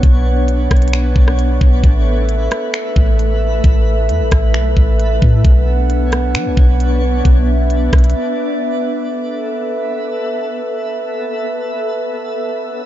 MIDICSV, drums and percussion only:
0, 0, Header, 1, 2, 480
1, 0, Start_track
1, 0, Tempo, 451128
1, 33, Time_signature, 4, 2, 24, 8
1, 13681, End_track
2, 0, Start_track
2, 0, Title_t, "Drums"
2, 34, Note_on_c, 9, 36, 118
2, 34, Note_on_c, 9, 42, 81
2, 140, Note_off_c, 9, 36, 0
2, 140, Note_off_c, 9, 42, 0
2, 513, Note_on_c, 9, 42, 84
2, 619, Note_off_c, 9, 42, 0
2, 754, Note_on_c, 9, 36, 99
2, 754, Note_on_c, 9, 42, 50
2, 758, Note_on_c, 9, 37, 113
2, 814, Note_off_c, 9, 42, 0
2, 814, Note_on_c, 9, 42, 60
2, 861, Note_off_c, 9, 36, 0
2, 864, Note_off_c, 9, 37, 0
2, 872, Note_off_c, 9, 42, 0
2, 872, Note_on_c, 9, 42, 72
2, 934, Note_off_c, 9, 42, 0
2, 934, Note_on_c, 9, 42, 83
2, 992, Note_off_c, 9, 42, 0
2, 992, Note_on_c, 9, 42, 73
2, 995, Note_on_c, 9, 26, 117
2, 1099, Note_off_c, 9, 42, 0
2, 1101, Note_off_c, 9, 26, 0
2, 1231, Note_on_c, 9, 36, 108
2, 1338, Note_off_c, 9, 36, 0
2, 1360, Note_on_c, 9, 37, 95
2, 1466, Note_off_c, 9, 37, 0
2, 1477, Note_on_c, 9, 42, 87
2, 1583, Note_off_c, 9, 42, 0
2, 1715, Note_on_c, 9, 36, 99
2, 1821, Note_off_c, 9, 36, 0
2, 1953, Note_on_c, 9, 36, 120
2, 1953, Note_on_c, 9, 42, 75
2, 2060, Note_off_c, 9, 36, 0
2, 2060, Note_off_c, 9, 42, 0
2, 2433, Note_on_c, 9, 42, 80
2, 2540, Note_off_c, 9, 42, 0
2, 2672, Note_on_c, 9, 42, 80
2, 2678, Note_on_c, 9, 37, 114
2, 2779, Note_off_c, 9, 42, 0
2, 2784, Note_off_c, 9, 37, 0
2, 2912, Note_on_c, 9, 42, 75
2, 2914, Note_on_c, 9, 26, 117
2, 3018, Note_off_c, 9, 42, 0
2, 3020, Note_off_c, 9, 26, 0
2, 3151, Note_on_c, 9, 36, 103
2, 3258, Note_off_c, 9, 36, 0
2, 3396, Note_on_c, 9, 42, 87
2, 3503, Note_off_c, 9, 42, 0
2, 3873, Note_on_c, 9, 42, 78
2, 3874, Note_on_c, 9, 36, 116
2, 3979, Note_off_c, 9, 42, 0
2, 3980, Note_off_c, 9, 36, 0
2, 4353, Note_on_c, 9, 42, 82
2, 4459, Note_off_c, 9, 42, 0
2, 4591, Note_on_c, 9, 42, 80
2, 4594, Note_on_c, 9, 36, 96
2, 4596, Note_on_c, 9, 37, 120
2, 4697, Note_off_c, 9, 42, 0
2, 4701, Note_off_c, 9, 36, 0
2, 4703, Note_off_c, 9, 37, 0
2, 4832, Note_on_c, 9, 42, 74
2, 4834, Note_on_c, 9, 26, 118
2, 4938, Note_off_c, 9, 42, 0
2, 4940, Note_off_c, 9, 26, 0
2, 5071, Note_on_c, 9, 36, 105
2, 5178, Note_off_c, 9, 36, 0
2, 5315, Note_on_c, 9, 42, 92
2, 5422, Note_off_c, 9, 42, 0
2, 5555, Note_on_c, 9, 36, 97
2, 5661, Note_off_c, 9, 36, 0
2, 5794, Note_on_c, 9, 36, 122
2, 5795, Note_on_c, 9, 42, 77
2, 5901, Note_off_c, 9, 36, 0
2, 5901, Note_off_c, 9, 42, 0
2, 6275, Note_on_c, 9, 42, 80
2, 6381, Note_off_c, 9, 42, 0
2, 6513, Note_on_c, 9, 42, 79
2, 6518, Note_on_c, 9, 37, 116
2, 6620, Note_off_c, 9, 42, 0
2, 6625, Note_off_c, 9, 37, 0
2, 6753, Note_on_c, 9, 42, 75
2, 6755, Note_on_c, 9, 26, 120
2, 6859, Note_off_c, 9, 42, 0
2, 6862, Note_off_c, 9, 26, 0
2, 6992, Note_on_c, 9, 36, 107
2, 7098, Note_off_c, 9, 36, 0
2, 7237, Note_on_c, 9, 42, 92
2, 7344, Note_off_c, 9, 42, 0
2, 7715, Note_on_c, 9, 36, 118
2, 7715, Note_on_c, 9, 42, 80
2, 7821, Note_off_c, 9, 36, 0
2, 7821, Note_off_c, 9, 42, 0
2, 8194, Note_on_c, 9, 42, 81
2, 8300, Note_off_c, 9, 42, 0
2, 8435, Note_on_c, 9, 36, 100
2, 8435, Note_on_c, 9, 42, 49
2, 8439, Note_on_c, 9, 37, 116
2, 8494, Note_off_c, 9, 42, 0
2, 8494, Note_on_c, 9, 42, 59
2, 8541, Note_off_c, 9, 36, 0
2, 8545, Note_off_c, 9, 37, 0
2, 8554, Note_off_c, 9, 42, 0
2, 8554, Note_on_c, 9, 42, 72
2, 8614, Note_off_c, 9, 42, 0
2, 8614, Note_on_c, 9, 42, 85
2, 8721, Note_off_c, 9, 42, 0
2, 13681, End_track
0, 0, End_of_file